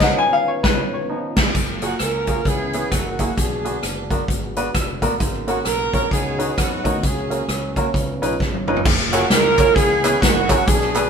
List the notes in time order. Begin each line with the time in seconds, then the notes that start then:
Already playing: D#3 B3 C#4 D#4 F4 B4 C#5
0.00 C#2 F3 B3 D#4 F#5, kick, snare, crash
0.18 G#5
0.33 F5
0.48 C#5
0.63 C#2 B4, kick, snare
0.94 C#5
1.09 F3 B3 D#4
1.36 C#2, kick, snare, crash
1.54 F#1 F#3 A#3 F4 G#4 A#4, kick, closed hi-hat
1.68 cross-stick
1.82 A#3 F4 F#4 G#4, closed hi-hat
1.99 C#2 C#4 F4 A#4, cross-stick, closed hi-hat
2.27 A#3 F4 F#4 G#4, kick, closed hi-hat
2.45 C#2 C#3 E3 B3 C#4 E4 G#4 B4, kick, closed hi-hat
2.73 B3 C#4 E4 G#4, closed hi-hat
2.91 F#1 G#3 A#3 C#4 F#4 A#4, kick, cross-stick, closed hi-hat
3.19 A#3 E4 F#4 G#4, kick, cross-stick, closed hi-hat
3.37 B1 B2 D3 G#3 B3 D4 G#4, kick, closed hi-hat
3.51 cross-stick
3.65 B3 D4 F#4 G#4, closed hi-hat
3.83 F#1, cross-stick, closed hi-hat
4.10 B3 D4 F#4 A#4, kick, closed hi-hat
4.28 G#1, kick, closed hi-hat
4.56 B3 D4 F#4 B4, closed hi-hat
4.74 F1, kick, cross-stick, closed hi-hat
5.02 A1 B3 D4 F#4 A#4, kick, cross-stick, closed hi-hat
5.19 G#1 G#2 C#3 A#3 C#4 F#4 A#4, kick, closed hi-hat
5.34 cross-stick
5.47 B3 C#4 F#4 A#4, closed hi-hat
5.65 B1 A#4, cross-stick, closed hi-hat
5.93 A#1 B3 C#4 F#4 A#4 C#5, kick, closed hi-hat
6.10 C#2 C#3 D#3 B3 C#4 D#4 G#4 C#5, kick, closed hi-hat
6.38 C#4 D#4 F#4 B4, closed hi-hat
6.58 F2 B3 D#4 F#4, kick, cross-stick, closed hi-hat
6.84 D2 C#4 D#4 F#4 A#4, kick, cross-stick, closed hi-hat
7.02 C#2 A#2 C#3 F#3 C#4 G#4 A#4, kick, closed hi-hat
7.17 cross-stick
7.30 A#3 C#4 F#4 A#4, closed hi-hat
7.48 C#2, cross-stick, closed hi-hat
7.76 A#3 C#4 F#4 A#4, kick, closed hi-hat
7.94 C#2 C#3 D#3 B3 D#4 F4 B4, kick, closed hi-hat
8.22 B1 C#4 D#4 F4 B4, closed hi-hat
8.40 G#1, kick, snare
8.54 high tom
8.67 G1 C#4 D#4 F4 B4, mid tom
8.76 floor tom
8.85 F#1 F#3 A#3 F4 G#4, kick, crash
8.99 snare
9.13 C#4 F4 F#4 G#4 A#4, clap, closed hi-hat
9.30 C#2 C#4 F4 A#4, snare, closed hi-hat
9.58 C#4 F4 F#4 G#4 C#5, kick, clap, closed hi-hat
9.75 C#2 C#3 E3 B3 C#4 E4 G#4, kick, closed hi-hat
10.04 B3 C#4 E4 G#4 B4, clap, closed hi-hat
10.21 F#1 G#3 A#3 C#4 F#4, kick, snare, closed hi-hat
10.49 C#4 E4 F#4 G#4 A#4, kick, clap, closed hi-hat
10.66 B1 B2 B3 D4 G#4, kick, closed hi-hat
10.81 snare
10.95 B3 D4 F#4 G#4 B4, clap, closed hi-hat